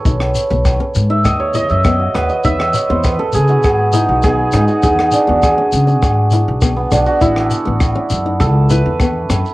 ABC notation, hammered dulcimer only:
X:1
M:4/4
L:1/16
Q:1/4=101
K:E
V:1 name="Hammered dulcimer"
c z6 e d c d e d F B d | e d c =c B A G F G B, D F G B, D F | G z =D F G4 z4 z B, D F | E6 z2 A2 B2 z4 |]